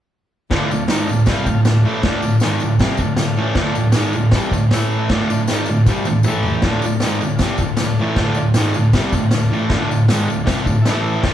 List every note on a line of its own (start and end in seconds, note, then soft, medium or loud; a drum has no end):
0.50 0.70 D2 medium
0.50 0.70 A2 loud
0.50 0.71 D3 loud
0.50 0.84 A4 loud
0.50 0.84 D5 loud
0.50 kick loud
0.50 snare loud
0.50 tambourine soft
0.50 crash medium
0.55 0.84 F4 loud
0.71 0.86 D2 medium
0.71 0.86 A2 medium
0.71 tambourine medium
0.88 1.08 G#2 medium
0.88 1.07 D#3 medium
0.88 1.09 G#3 loud
0.88 1.22 F4 medium
0.88 1.22 A4 medium
0.88 1.22 D5 medium
0.88 snare loud
0.88 tambourine medium
0.88 crash medium
1.08 1.24 D2 medium
1.08 1.24 A2 medium
1.08 tambourine medium
1.19 tambourine soft
1.26 1.45 C3 medium
1.26 1.46 G3 loud
1.26 1.47 C4 loud
1.26 kick loud
1.26 snare loud
1.26 tambourine medium
1.26 crash medium
1.31 1.61 F4 medium
1.31 1.61 A4 medium
1.31 1.61 F5 medium
1.37 tambourine soft
1.46 1.62 D2 medium
1.46 1.62 A2 medium
1.46 kick medium
1.46 tambourine medium
1.65 1.81 D2 medium
1.65 1.81 A2 medium
1.65 1.98 F4 medium
1.65 1.98 A4 medium
1.65 1.98 D5 medium
1.65 snare loud
1.65 tambourine medium
1.65 crash medium
1.85 2.02 A2 medium
1.85 2.04 E3 medium
1.85 2.05 A3 loud
1.85 tambourine soft
2.03 2.21 D2 loud
2.03 2.22 A2 loud
2.03 2.23 D3 loud
2.03 2.36 F4 loud
2.03 2.36 A4 loud
2.03 2.36 D5 loud
2.03 kick loud
2.03 snare loud
2.03 tambourine soft
2.03 crash medium
2.22 2.38 D2 medium
2.22 2.39 A2 medium
2.22 tambourine medium
2.40 2.61 G#2 loud
2.40 2.62 D#3 loud
2.40 2.61 G#3 loud
2.40 2.74 F4 medium
2.40 snare loud
2.40 tambourine medium
2.40 crash medium
2.44 2.75 A4 medium
2.44 2.75 D5 medium
2.60 2.77 D2 medium
2.60 2.77 A2 medium
2.60 tambourine medium
2.70 tambourine soft
2.79 2.99 C3 medium
2.79 2.99 G3 loud
2.79 3.00 C4 loud
2.79 3.13 A4 medium
2.79 3.13 D5 medium
2.79 kick loud
2.79 snare loud
2.79 tambourine medium
2.79 crash medium
2.84 3.14 F4 medium
2.97 3.15 D2 medium
2.97 3.15 A2 medium
2.97 kick medium
2.97 tambourine medium
3.17 3.34 D2 medium
3.17 3.34 A2 medium
3.17 3.50 F4 medium
3.17 3.50 A4 medium
3.17 3.50 D5 medium
3.17 snare loud
3.17 tambourine medium
3.17 crash medium
3.36 3.54 A2 medium
3.36 3.55 E3 loud
3.36 3.57 A3 loud
3.36 tambourine soft
3.55 3.75 D2 loud
3.55 3.75 A2 loud
3.55 3.76 D3 loud
3.55 3.88 F4 loud
3.55 3.89 A4 loud
3.55 3.88 D5 loud
3.55 kick loud
3.55 snare loud
3.55 tambourine soft
3.55 crash medium
3.75 3.92 D2 medium
3.75 3.92 A2 medium
3.75 tambourine medium
3.92 4.14 G#2 medium
3.92 4.14 D#3 loud
3.92 snare loud
3.92 tambourine medium
3.92 crash medium
3.96 4.15 G#3 loud
3.96 4.28 F4 medium
3.96 4.28 A4 medium
3.96 4.28 D5 medium
4.13 4.30 D2 medium
4.13 4.30 A2 medium
4.13 tambourine medium
4.23 tambourine soft
4.31 4.52 C3 medium
4.31 4.53 G3 loud
4.31 4.53 C4 loud
4.31 4.64 F4 medium
4.31 4.65 A4 medium
4.31 4.65 D5 medium
4.31 kick loud
4.31 snare loud
4.31 tambourine medium
4.31 crash medium
4.44 tambourine soft
4.52 4.68 D2 medium
4.52 4.68 A2 medium
4.52 kick medium
4.52 tambourine medium
4.71 5.09 A2 medium
4.71 5.10 E3 medium
4.71 5.10 A3 loud
4.71 5.04 E4 medium
4.71 5.04 A4 medium
4.71 5.04 E5 medium
4.71 snare loud
4.71 tambourine medium
4.71 crash medium
4.92 tambourine soft
5.09 5.29 D2 loud
5.09 5.29 A2 loud
5.09 5.30 D3 loud
5.09 5.42 F4 loud
5.09 5.42 A4 loud
5.09 5.42 D5 loud
5.09 kick loud
5.09 snare loud
5.09 tambourine soft
5.09 crash medium
5.21 tambourine soft
5.30 5.45 D2 medium
5.30 5.45 A2 medium
5.30 tambourine medium
5.40 tambourine soft
5.48 5.67 G#2 loud
5.48 5.68 D#3 medium
5.48 5.68 G#3 loud
5.48 snare loud
5.48 tambourine loud
5.48 crash medium
5.52 5.82 F4 medium
5.52 5.82 A4 medium
5.52 5.82 D5 loud
5.57 tambourine soft
5.66 tambourine medium
5.70 5.84 D2 medium
5.70 5.84 A2 medium
5.76 tambourine soft
5.86 6.06 C3 medium
5.86 6.06 G3 loud
5.86 6.19 F4 medium
5.86 6.19 A4 medium
5.86 6.19 D5 medium
5.86 kick loud
5.86 snare medium
5.86 tambourine medium
5.90 6.07 C4 medium
6.05 6.22 D2 medium
6.05 6.22 A2 medium
6.05 high tom medium
6.05 tambourine medium
6.23 6.63 A2 loud
6.23 6.57 E4 medium
6.23 6.57 A4 medium
6.23 6.57 E5 medium
6.23 mid tom medium
6.23 tambourine medium
6.27 6.64 E3 loud
6.27 6.65 A3 loud
6.33 tambourine soft
6.43 6.63 G5 medium
6.43 floor tom medium
6.43 tambourine soft
6.62 6.83 D2 loud
6.62 6.83 A2 medium
6.62 6.95 F4 loud
6.62 6.95 A4 medium
6.62 6.95 D5 loud
6.62 kick loud
6.62 snare loud
6.62 tambourine soft
6.62 crash medium
6.66 6.84 D3 loud
6.82 6.99 D2 medium
6.82 6.99 A2 medium
6.82 tambourine medium
6.97 7.31 F4 medium
6.97 7.31 A4 medium
6.97 7.32 D5 medium
6.97 snare loud
6.97 crash medium
7.01 7.21 G#2 medium
7.01 7.21 D#3 loud
7.01 7.22 G#3 loud
7.01 tambourine loud
7.21 7.36 D2 medium
7.21 7.37 A2 medium
7.21 tambourine medium
7.30 tambourine soft
7.36 7.69 F4 medium
7.36 7.71 A4 medium
7.36 7.70 D5 medium
7.36 kick loud
7.36 snare loud
7.36 tambourine medium
7.36 crash medium
7.40 7.59 C3 medium
7.40 7.60 G3 loud
7.40 7.60 C4 loud
7.48 tambourine soft
7.58 7.76 D2 medium
7.58 kick medium
7.58 tambourine medium
7.62 7.76 A2 medium
7.76 8.09 F4 medium
7.76 8.09 A4 medium
7.76 8.09 D5 medium
7.76 snare loud
7.76 tambourine medium
7.76 crash medium
7.81 7.95 D2 medium
7.81 7.95 A2 medium
7.98 8.17 A2 medium
7.98 8.18 E3 medium
7.98 8.18 A3 medium
7.98 tambourine soft
8.15 8.36 D2 loud
8.15 8.47 F4 loud
8.15 8.47 A4 loud
8.15 8.48 D5 loud
8.15 kick loud
8.15 snare loud
8.15 tambourine soft
8.15 crash medium
8.19 8.37 A2 loud
8.19 8.37 D3 loud
8.35 8.52 D2 medium
8.35 8.52 A2 medium
8.35 tambourine medium
8.54 8.75 G#2 loud
8.54 8.75 D#3 loud
8.54 8.75 G#3 loud
8.54 8.87 F4 medium
8.54 8.88 A4 medium
8.54 8.87 D5 medium
8.54 snare loud
8.54 tambourine loud
8.54 crash medium
8.74 8.91 D2 medium
8.74 8.91 A2 medium
8.74 tambourine medium
8.93 9.13 C3 medium
8.93 9.13 G3 loud
8.93 9.14 C4 loud
8.93 9.26 F4 medium
8.93 9.27 A4 medium
8.93 9.26 D5 medium
8.93 kick loud
8.93 snare loud
8.93 tambourine medium
8.93 crash medium
9.04 tambourine soft
9.13 9.29 D2 medium
9.13 9.30 A2 medium
9.13 kick medium
9.13 tambourine medium
9.31 9.49 D2 medium
9.31 9.49 A2 medium
9.31 9.63 F4 medium
9.31 9.64 A4 medium
9.31 9.64 D5 medium
9.31 snare loud
9.31 tambourine medium
9.31 crash medium
9.52 9.70 A2 loud
9.52 9.71 E3 loud
9.52 9.71 A3 loud
9.52 tambourine soft
9.70 9.90 D2 loud
9.70 9.90 A2 loud
9.70 10.02 F4 loud
9.70 10.02 A4 loud
9.70 10.03 D5 loud
9.70 kick loud
9.70 snare loud
9.70 tambourine soft
9.70 crash medium
9.74 9.91 D3 loud
9.91 10.06 D2 medium
9.91 10.06 A2 medium
9.91 tambourine medium
10.09 10.28 G#2 loud
10.09 10.29 D#3 medium
10.09 10.29 G#3 loud
10.09 10.40 F4 medium
10.09 10.41 A4 medium
10.09 10.41 D5 loud
10.09 snare loud
10.09 tambourine loud
10.09 crash medium
10.29 10.44 D2 medium
10.29 10.44 A2 medium
10.29 tambourine medium
10.44 10.65 C3 loud
10.44 10.66 G3 loud
10.44 10.66 C4 loud
10.44 10.77 F4 medium
10.44 10.77 A4 medium
10.44 10.77 D5 medium
10.44 kick loud
10.44 snare loud
10.44 crash medium
10.48 tambourine medium
10.59 tambourine soft
10.66 10.82 D2 medium
10.66 10.82 A2 medium
10.66 kick medium
10.66 tambourine medium
10.81 11.15 E4 medium
10.81 11.15 A4 medium
10.81 11.15 E5 medium
10.85 11.23 A2 medium
10.85 11.24 E3 loud
10.85 11.25 A3 loud
10.85 snare loud
10.85 tambourine medium
10.85 crash medium
11.06 tambourine soft
11.21 11.34 D2 medium
11.21 11.34 A2 loud
11.21 11.34 F4 loud
11.21 11.34 A4 loud
11.21 11.34 D5 loud
11.21 kick loud
11.21 snare loud
11.21 tambourine soft
11.21 crash medium
11.27 11.34 D3 loud